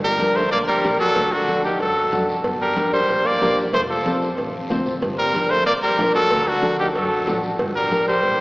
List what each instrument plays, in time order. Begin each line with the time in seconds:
Already playing: double bass G1
0.04 tenor saxophone G3, trumpet A#4
0.19 nylon-string guitar D4 G4 A#4, cowbell, high conga, short guiro
0.36 tenor saxophone A3, trumpet C5, short guiro
0.51 double bass A#1, tenor saxophone A#3, trumpet D5, cowbell, high conga, long guiro
0.67 tenor saxophone G3, trumpet A#4
0.84 double bass A#1, nylon-string guitar D4 G4 A#4, cowbell, high conga, short guiro
0.99 tenor saxophone F#3, trumpet A4, short guiro
1.16 double bass D2, cowbell, high conga
1.32 tenor saxophone D3, trumpet F#4
1.48 nylon-string guitar D4 F#4 A4, cowbell, high conga, short guiro
1.65 tenor saxophone D#3, trumpet G4, short guiro
1.79 double bass F#2, tenor saxophone F#3, trumpet A4, cowbell, high conga, long guiro
2.12 double bass F#2, nylon-string guitar D4 F#4 A4, cowbell, high conga, low conga, short guiro
2.29 short guiro
2.44 double bass G1, cowbell, high conga, long guiro
2.61 tenor saxophone G3, trumpet A#4
2.76 nylon-string guitar D4 G4 A#4, cowbell, high conga, short guiro
2.93 tenor saxophone G3, trumpet C5, short guiro
3.08 double bass A#1, cowbell, high conga, long guiro
3.25 tenor saxophone A#3, trumpet D5
3.41 double bass A#1, nylon-string guitar D4 G4 A#4, cowbell, high conga, low timbale, short guiro
3.58 short guiro
3.73 double bass F1, tenor saxophone A3, trumpet C5, cowbell, high conga, long guiro
3.89 tenor saxophone F3, trumpet A4
4.05 nylon-string guitar C4 F4 A4, cowbell, high conga, short guiro
4.22 short guiro
4.37 double bass A1, cowbell, long guiro
4.70 double bass D2, nylon-string guitar C4 F4 C5, cowbell, high conga, low conga, short guiro
4.86 low conga, short guiro
5.02 double bass G1, cowbell, high conga, long guiro
5.18 tenor saxophone G3, trumpet A#4
5.34 nylon-string guitar D4 G4 A#4, cowbell, high conga, short guiro
5.50 tenor saxophone A3, trumpet C5, short guiro
5.66 double bass A#1, tenor saxophone A#3, trumpet D5, cowbell, high conga, long guiro
5.83 tenor saxophone G3, trumpet A#4
5.98 double bass A#1, nylon-string guitar D4 G4 A#4, cowbell, high conga, low timbale, short guiro
6.14 tenor saxophone F#3, trumpet A4, short guiro
6.30 double bass D2, cowbell, high conga, long guiro
6.48 tenor saxophone D3, trumpet F#4
6.62 nylon-string guitar D4 F#4 A4, cowbell, high conga, short guiro
6.79 tenor saxophone D#3, trumpet G4, short guiro
6.95 double bass F#2, tenor saxophone F#3, trumpet A4, cowbell, high conga, long guiro
7.27 double bass A1, nylon-string guitar D4 F#4 A4, cowbell, high conga, low conga, low timbale, short guiro
7.43 short guiro
7.59 double bass G1, cowbell, high conga, long guiro
7.75 tenor saxophone G3, trumpet A#4
7.91 nylon-string guitar D4 G4 A#4, cowbell, high conga, short guiro
8.08 tenor saxophone G3, trumpet C5, short guiro
8.23 double bass A#1, cowbell, high conga, long guiro